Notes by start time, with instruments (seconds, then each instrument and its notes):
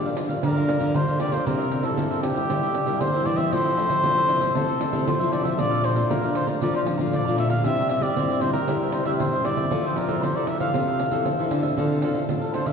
Already playing: nylon-string guitar D3 F3 G3 A#3 D4, muted trumpet D5
0.05 cavaquinho A#4 D5 F5, pandeiro
0.16 nylon-string guitar F3 A#3 D4, muted cavaquinho stroke, pandeiro
0.29 cavaquinho A#4 D5 F5, pandeiro
0.43 nylon-string guitar G2 D3, cavaquinho G4 A#4 D5 F5, muted trumpet A#4, pandeiro
0.56 nylon-string guitar F3 A#3 D4, cavaquinho A#4 D5 F5, pandeiro
0.69 pandeiro
0.80 nylon-string guitar D3, cavaquinho A#4 D5 F5, pandeiro
0.94 nylon-string guitar D3 F3 G3 A#3 D4, muted trumpet C5, pandeiro
1.08 nylon-string guitar D3, cavaquinho A#4 D5 F5, pandeiro
1.20 nylon-string guitar F3 A#3 D4, cavaquinho G4 A#4 D5 F5, muted trumpet D5, pandeiro
1.32 cavaquinho A#4 D5 F5, muted trumpet C5, pandeiro
1.45 nylon-string guitar C3 G3 A#3 E4, cavaquinho E4 A#4 C5 E5, muted trumpet A#4, pandeiro
1.59 cavaquinho A#4 C5 E5, pandeiro
1.71 muted cavaquinho stroke, pandeiro
1.82 nylon-string guitar G3 A#3 E4, muted trumpet A4, cavaquinho A#4 C5 E5, pandeiro
1.97 nylon-string guitar G2 C4, cavaquinho E4 A#4 C5 E5, pandeiro
2.11 nylon-string guitar G3 A#3 E4, cavaquinho A#4 C5 E5, pandeiro
2.22 muted trumpet G4, muted cavaquinho stroke, pandeiro
2.34 nylon-string guitar G3 A#3 E4, cavaquinho A#4 C5 E5, pandeiro
2.48 nylon-string guitar C3 G3 A#3 E4, cavaquinho E4 A#4 C5 E5, pandeiro
2.62 cavaquinho A#4 C5 E5, pandeiro
2.74 pandeiro
2.86 nylon-string guitar G3 A#3 E4, cavaquinho A#4 C5 E5, pandeiro
3.01 nylon-string guitar G2 D3, muted trumpet C5, pandeiro
3.13 nylon-string guitar G3 A#3 E4, cavaquinho A#4 C5 E5, pandeiro
3.26 nylon-string guitar E3, cavaquinho E4 A#4 C5 E5, muted trumpet D5, pandeiro
3.37 cavaquinho A#4 C5 E5, muted trumpet E5, pandeiro
3.52 nylon-string guitar F3 A3 C4 E4, cavaquinho F4 A4 C5 E5, muted trumpet C5, pandeiro
3.65 cavaquinho A4 C5 E5, pandeiro
3.78 nylon-string guitar A3 C4 E4, muted cavaquinho stroke, pandeiro
3.89 cavaquinho A4 C5 E5, pandeiro
4.03 nylon-string guitar C3 F3, cavaquinho F4 A4 C5 E5, pandeiro
4.17 nylon-string guitar A3 C4 E4, cavaquinho A4 C5 E5, pandeiro
4.29 muted cavaquinho stroke, pandeiro
4.41 nylon-string guitar A3 C4 E4, cavaquinho A4 C5 E5, pandeiro
4.55 nylon-string guitar C3 F3 A3 C4 E4, cavaquinho F4 A4 C5 E5, muted trumpet A4, pandeiro
4.68 cavaquinho A4 C5 E5, pandeiro
4.81 pandeiro
4.93 nylon-string guitar C3 A3 C4 E4, cavaquinho A4 C5 E5, pandeiro
5.07 nylon-string guitar C3 F3, muted trumpet C5, pandeiro
5.20 nylon-string guitar F3 A3 C4 E4, cavaquinho A4 C5 E5, pandeiro
5.31 cavaquinho F4 A4 C5 E5, muted trumpet D5, pandeiro
5.43 cavaquinho A4 C5 E5, muted trumpet E5, pandeiro
5.57 nylon-string guitar A#2 A3 D4 F4, cavaquinho A4 D5 F5 A#5, muted trumpet D5, pandeiro
5.70 cavaquinho D5 F5 A#5, pandeiro
5.82 muted trumpet C5, muted cavaquinho stroke, pandeiro
5.94 nylon-string guitar A3 D4 F4, cavaquinho D5 F5 A#5, pandeiro
6.08 nylon-string guitar F3 A#3, cavaquinho A4 D5 F5 A#5, muted trumpet A#4, pandeiro
6.22 nylon-string guitar A3 D4 F4, cavaquinho D5 F5 A#5, pandeiro
6.35 muted trumpet C5, muted cavaquinho stroke, pandeiro
6.47 nylon-string guitar A3 D4 F4, cavaquinho D5 F5 A#5, pandeiro
6.61 nylon-string guitar A#2 F3 A3 D4 F4, cavaquinho A4 D5 F5 A#5, muted trumpet D5, pandeiro
6.74 muted trumpet C5, cavaquinho D5 F5 A#5, pandeiro
6.86 pandeiro
6.98 nylon-string guitar F3 A3 D4 F4, cavaquinho D5 F5 A#5, pandeiro
7.13 nylon-string guitar A#2 F3, muted trumpet D5, pandeiro
7.25 nylon-string guitar A#2 A3 D4 F4, cavaquinho D5 F5 A#5, pandeiro
7.37 cavaquinho A4 D5 F5 A#5, muted trumpet E5, pandeiro
7.49 cavaquinho D5 F5 A#5, muted trumpet F5, pandeiro
7.64 nylon-string guitar C3 G3 C4 E4, cavaquinho E4 G4 C5 E5, muted trumpet E5, pandeiro
7.78 cavaquinho G4 C5 E5, pandeiro
7.89 nylon-string guitar G3 C4 E4, muted trumpet E5, muted cavaquinho stroke, pandeiro
8.01 cavaquinho G4 C5 E5, muted trumpet D5, pandeiro
8.15 nylon-string guitar G2 G3 C4 E4, cavaquinho E4 G4 C5 E5, pandeiro
8.29 cavaquinho G4 C5 E5, pandeiro
8.41 nylon-string guitar G3 C4 E4, muted trumpet C5, muted cavaquinho stroke, pandeiro
8.53 cavaquinho G4 C5 E5, muted trumpet A#4, pandeiro
8.68 nylon-string guitar C3 G3 C4 E4, cavaquinho E4 G4 C5 E5, pandeiro
8.81 cavaquinho G4 C5 E5, pandeiro
8.92 muted trumpet C5, pandeiro
9.05 nylon-string guitar G3 C4 E4, cavaquinho G4 C5 E5, muted trumpet E5, pandeiro
9.19 nylon-string guitar G2 C3, muted trumpet C5, pandeiro
9.33 nylon-string guitar C3, cavaquinho G4 C5 E5, pandeiro
9.45 nylon-string guitar G3 C4 E4, cavaquinho E4 G4 C5 E5, muted trumpet D5, pandeiro
9.57 cavaquinho G4 C5 E5, pandeiro
9.71 nylon-string guitar F3 C4 E4 A4, cavaquinho F4 A4 C5 E5, pandeiro
9.84 cavaquinho A4 C5 E5, muted trumpet C5, pandeiro
9.96 muted trumpet A#4, muted cavaquinho stroke, pandeiro
10.07 nylon-string guitar C4 E4 A4, cavaquinho A4 C5 E5, pandeiro
10.22 nylon-string guitar C3 F3, cavaquinho F4 A4 C5 E5, muted trumpet C5, pandeiro
10.36 nylon-string guitar C4 E4 A4, cavaquinho A4 C5 E5, muted trumpet D5, pandeiro
10.47 muted trumpet E5, muted cavaquinho stroke, pandeiro
10.60 nylon-string guitar C4 E4 A4, cavaquinho A4 C5 E5, muted trumpet F5, pandeiro
10.74 nylon-string guitar C3 F3 C4 A4, cavaquinho F4 A4 C5 E5, pandeiro
10.87 cavaquinho A4 C5 E5, pandeiro
10.99 pandeiro
11.11 nylon-string guitar C3 C4 E4 A4, cavaquinho A4 C5 E5, pandeiro
11.25 nylon-string guitar C3 E3, pandeiro
11.39 nylon-string guitar C4 E4 A4, cavaquinho A4 C5 E5, pandeiro
11.51 nylon-string guitar D3, cavaquinho F4 A4 C5 E5, pandeiro
11.63 cavaquinho A4 C5 E5, pandeiro
11.76 nylon-string guitar D3 C4 F4 A4, cavaquinho D4 A4 C5 F5, pandeiro
11.91 pandeiro
12.01 nylon-string guitar C4 F4 A4, cavaquinho D4 A4 C5 F5, pandeiro
12.14 cavaquinho A4 C5 F5, pandeiro
12.28 nylon-string guitar A2 C4 F4 A4, pandeiro
12.41 muted trumpet A4, cavaquinho A4 C5 F5, pandeiro
12.53 cavaquinho D4 A4 C5 F5, muted trumpet C5, pandeiro
12.66 nylon-string guitar D3, cavaquinho A4 C5 F5, muted trumpet E5, pandeiro